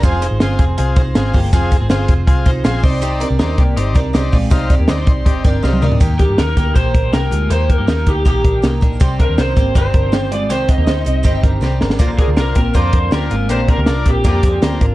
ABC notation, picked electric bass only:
X:1
M:4/4
L:1/16
Q:1/4=160
K:Cm
V:1 name="Picked electric bass" clef=bass
F,,,3 A,,, G,,,2 F,,,2 C,,2 C,,2 A,,,2 G,,,2 | F,,,3 A,,, G,,,2 F,,,2 C,,2 C,,2 B,,,2 C,,2- | C,,3 C,, E,,2 C,,2 G,,,2 C,,2 C,,2 B,,,2 | C,,3 E,, D,,2 C,,2 G,,,2 G,,,2 C,,2 D,,2 |
E,,3 G,, E,,2 D,,2 B,,,2 B,,,2 C,,2 D,,2 | E,,3 G,, E,,2 D,,2 B,,,2 B,,,2 C,,2 B,,,2 | C,,3 E,, C,,2 A,,,2 G,,,2 G,,,6 | C,,3 E,, D,,2 C,,2 G,,,2 G,,,2 C,,2 A,,,2 |
B,,,3 D,, C,,2 B,,,2 F,,2 F,,2 D,,2 A,,,2 | B,,,3 D,, C,,2 B,,,2 F,,2 F,,2 D,,2 A,,,2 |]